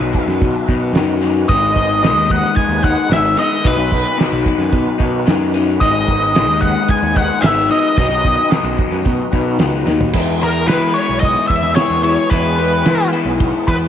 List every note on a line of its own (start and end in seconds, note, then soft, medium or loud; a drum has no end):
0.00 0.13 B1 medium
0.00 0.95 B2 loud
0.00 0.94 D#3 medium
0.00 0.69 F#3 loud
0.00 0.68 B3 loud
0.00 0.67 D#4 loud
0.00 5.75 D#4 medium
0.00 1.47 F#4 medium
0.00 3.59 B4 medium
0.13 kick medium
0.13 open hi-hat medium
0.13 maracas medium
0.26 0.40 F#2 medium
0.26 snare soft
0.26 maracas soft
0.39 0.54 B2 medium
0.39 kick loud
0.39 open hi-hat medium
0.39 maracas medium
0.66 0.92 B2 medium
0.66 0.95 F#3 medium
0.66 0.96 B3 medium
0.66 0.97 D#4 medium
0.66 kick medium
0.66 open hi-hat medium
0.66 maracas medium
0.80 maracas soft
0.93 1.44 F#2 loud
0.93 1.47 D#3 medium
0.93 1.22 F#3 medium
0.93 1.22 B3 medium
0.93 snare loud
0.93 open hi-hat medium
0.93 maracas medium
0.97 1.21 D#4 medium
1.21 1.48 F#3 medium
1.21 1.50 B3 medium
1.21 1.51 D#4 medium
1.21 open hi-hat medium
1.21 maracas medium
1.47 2.15 G#1 medium
1.47 2.01 G#2 medium
1.47 2.01 D#3 loud
1.47 1.76 G#3 loud
1.47 1.75 B3 loud
1.47 1.74 D#4 loud
1.47 3.63 G#4 medium
1.47 2.32 D#5 medium
1.47 kick loud
1.47 open hi-hat medium
1.47 maracas medium
1.73 2.02 G#3 medium
1.73 2.03 B3 medium
1.73 2.03 D#4 medium
1.73 kick medium
1.73 open hi-hat medium
1.73 maracas medium
1.88 maracas soft
2.01 3.10 G#2 medium
2.01 3.08 D#3 medium
2.01 2.83 G#3 medium
2.01 2.83 B3 loud
2.01 2.82 D#4 loud
2.01 snare loud
2.01 open hi-hat medium
2.01 maracas medium
2.15 2.41 D#2 medium
2.27 kick medium
2.27 open hi-hat medium
2.27 maracas medium
2.31 2.56 F#5 medium
2.41 maracas soft
2.45 snare soft
2.54 2.84 G#5 medium
2.54 kick loud
2.54 open hi-hat medium
2.54 maracas medium
2.68 2.94 D#2 medium
2.80 3.11 B3 medium
2.80 3.11 D#4 medium
2.80 3.12 F#5 medium
2.80 kick medium
2.80 open hi-hat medium
2.80 maracas medium
2.85 3.09 G#3 medium
3.10 3.35 G#1 medium
3.10 3.62 D#3 medium
3.10 3.37 G#3 medium
3.10 3.37 B3 medium
3.10 3.36 D#4 medium
3.10 3.38 E5 medium
3.10 snare loud
3.10 open hi-hat medium
3.10 maracas medium
3.35 3.63 G#3 medium
3.35 3.64 B3 medium
3.35 3.64 D#4 medium
3.35 3.66 D#5 medium
3.35 open hi-hat medium
3.35 maracas loud
3.50 maracas soft
3.62 3.77 B1 medium
3.62 4.16 B2 loud
3.62 4.16 D#3 loud
3.62 3.91 F#3 medium
3.62 3.91 B3 loud
3.62 3.91 D#4 loud
3.62 5.79 F#4 medium
3.62 kick loud
3.62 open hi-hat medium
3.62 maracas medium
3.67 4.16 B4 medium
3.67 10.12 B4 medium
3.78 4.03 B1 medium
3.89 4.16 F#3 medium
3.89 4.17 B3 medium
3.89 4.18 D#4 medium
3.89 kick medium
3.89 open hi-hat medium
3.89 maracas loud
4.03 maracas soft
4.17 5.26 B2 medium
4.17 5.24 D#3 medium
4.17 4.99 F#3 medium
4.17 4.98 B3 loud
4.17 4.98 D#4 loud
4.17 snare loud
4.17 open hi-hat medium
4.17 maracas medium
4.33 4.45 B1 loud
4.44 kick medium
4.44 open hi-hat medium
4.44 maracas medium
4.58 4.71 F#2 medium
4.58 snare soft
4.58 maracas soft
4.72 4.85 B2 loud
4.72 kick loud
4.72 open hi-hat medium
4.72 maracas medium
4.98 5.25 B2 medium
4.98 5.25 F#3 medium
4.98 5.27 B3 medium
4.98 5.27 D#4 medium
4.98 kick medium
4.98 open hi-hat medium
4.98 maracas medium
5.26 5.78 F#2 loud
5.26 5.79 D#3 medium
5.26 5.54 F#3 medium
5.26 5.54 B3 medium
5.26 5.53 D#4 medium
5.26 snare loud
5.26 open hi-hat medium
5.26 maracas medium
5.54 5.80 F#3 medium
5.54 5.82 B3 medium
5.54 5.82 D#4 medium
5.54 open hi-hat medium
5.54 maracas medium
5.67 maracas soft
5.80 6.48 G#1 medium
5.80 6.33 G#2 loud
5.80 6.34 D#3 medium
5.80 6.08 G#3 loud
5.80 6.09 B3 loud
5.80 10.10 D#4 medium
5.80 6.07 D#4 loud
5.80 7.95 G#4 medium
5.80 6.64 D#5 medium
5.80 kick loud
5.80 open hi-hat medium
5.80 maracas medium
6.07 6.34 G#3 medium
6.07 6.36 B3 medium
6.07 6.36 D#4 medium
6.07 kick medium
6.07 open hi-hat medium
6.07 maracas loud
6.21 maracas soft
6.34 7.43 G#2 medium
6.34 7.42 D#3 medium
6.34 7.16 G#3 loud
6.34 7.16 B3 loud
6.34 7.14 D#4 loud
6.34 snare loud
6.34 open hi-hat medium
6.34 maracas medium
6.48 6.73 D#2 medium
6.61 6.89 F#5 medium
6.61 kick medium
6.61 open hi-hat medium
6.61 maracas loud
6.77 maracas soft
6.88 7.17 G#5 loud
6.88 kick loud
6.88 open hi-hat medium
6.88 maracas medium
7.02 7.28 D#2 medium
7.15 7.43 G#3 medium
7.15 7.44 B3 medium
7.15 7.44 D#4 medium
7.15 7.45 F#5 loud
7.15 kick loud
7.15 open hi-hat medium
7.15 maracas loud
7.42 7.68 G#1 medium
7.42 7.96 D#3 medium
7.42 7.71 G#3 medium
7.42 7.71 B3 medium
7.42 7.69 D#4 medium
7.42 7.70 E5 medium
7.42 snare loud
7.42 open hi-hat medium
7.42 maracas medium
7.69 7.97 G#3 medium
7.69 7.99 B3 medium
7.69 7.96 D#4 medium
7.69 7.97 D#5 medium
7.69 open hi-hat medium
7.69 maracas medium
7.84 maracas soft
7.96 8.10 B1 medium
7.96 8.49 B2 loud
7.96 8.49 D#3 loud
7.96 8.25 F#3 loud
7.96 8.24 B3 medium
7.96 8.23 D#4 loud
7.96 10.12 F#4 medium
7.96 8.48 D#5 medium
7.96 kick loud
7.96 open hi-hat medium
7.96 maracas medium
8.10 8.36 B1 medium
8.23 8.50 F#3 medium
8.23 8.50 B3 medium
8.23 8.50 D#4 medium
8.23 kick medium
8.23 open hi-hat medium
8.23 maracas medium
8.38 maracas soft
8.50 9.59 B2 loud
8.50 9.58 D#3 medium
8.50 9.33 F#3 loud
8.50 9.32 B3 medium
8.50 9.31 D#4 medium
8.50 snare loud
8.50 open hi-hat medium
8.50 maracas medium
8.64 8.77 B1 medium
8.77 kick medium
8.77 open hi-hat medium
8.77 maracas medium
8.91 9.04 F#2 medium
8.91 maracas soft
9.05 9.19 B2 loud
9.05 kick loud
9.05 open hi-hat medium
9.05 maracas medium
9.32 9.58 B2 medium
9.32 9.58 F#3 medium
9.32 9.59 B3 medium
9.32 9.59 D#4 medium
9.32 kick medium
9.32 open hi-hat medium
9.32 maracas medium
9.46 maracas soft
9.59 9.84 C#2 medium
9.59 10.12 D#3 medium
9.59 9.87 F#3 medium
9.59 9.86 B3 medium
9.59 9.85 D#4 medium
9.59 snare loud
9.59 open hi-hat medium
9.59 maracas medium
9.86 10.11 D#2 medium
9.86 10.13 F#3 medium
9.86 10.13 B3 medium
9.86 10.12 D#4 medium
9.86 snare medium
9.86 maracas medium
10.01 floor tom medium
10.01 maracas soft
10.13 10.65 E2 medium
10.13 10.68 E3 medium
10.13 10.42 G#3 loud
10.13 13.88 B3 medium
10.13 10.42 B3 loud
10.13 13.88 E4 medium
10.13 10.41 E4 medium
10.13 13.88 G#4 medium
10.13 kick loud
10.13 crash loud
10.41 10.68 G#3 medium
10.41 10.69 B3 medium
10.41 10.69 E4 medium
10.41 10.67 A#4 medium
10.41 ride medium
10.67 10.93 E3 loud
10.67 11.75 E3 loud
10.67 10.98 G#3 loud
10.67 10.97 B3 medium
10.67 10.96 E4 loud
10.67 10.94 B4 medium
10.67 snare loud
10.67 ride medium
10.94 11.77 B3 medium
10.94 11.77 E4 medium
10.94 11.20 C#5 medium
10.94 ride medium
10.98 11.76 G#3 medium
11.09 11.35 B1 medium
11.20 11.47 D#5 loud
11.20 kick loud
11.20 ride medium
11.47 11.76 E2 medium
11.47 11.75 E5 medium
11.47 kick medium
11.47 ride medium
11.63 snare soft
11.76 12.31 E3 medium
11.76 12.05 G#3 medium
11.76 12.04 B3 medium
11.76 12.03 E4 medium
11.76 12.02 C#5 medium
11.76 snare loud
11.76 ride medium
11.90 12.16 E2 medium
12.03 12.31 G#3 medium
12.03 12.32 B3 medium
12.03 12.32 E4 medium
12.03 12.32 C#5 medium
12.03 ride medium
12.30 12.82 E2 medium
12.30 12.85 E3 medium
12.30 12.60 G#3 loud
12.30 12.60 B3 loud
12.30 12.59 E4 loud
12.30 13.09 B4 medium
12.30 kick loud
12.30 ride medium
12.58 12.86 G#3 medium
12.58 12.86 B3 medium
12.58 12.86 E4 medium
12.58 ride medium
12.85 13.88 E3 loud
12.85 13.11 E3 loud
12.85 13.14 G#3 loud
12.85 13.13 B3 loud
12.85 13.12 E4 loud
12.85 snare loud
12.85 ride medium
13.12 13.88 G#3 medium
13.12 13.88 B3 medium
13.12 13.88 E4 medium
13.12 ride medium
13.25 13.52 B1 medium
13.40 kick loud
13.40 ride loud
13.68 13.88 E2 loud
13.68 13.75 B4 medium
13.68 kick medium
13.68 ride medium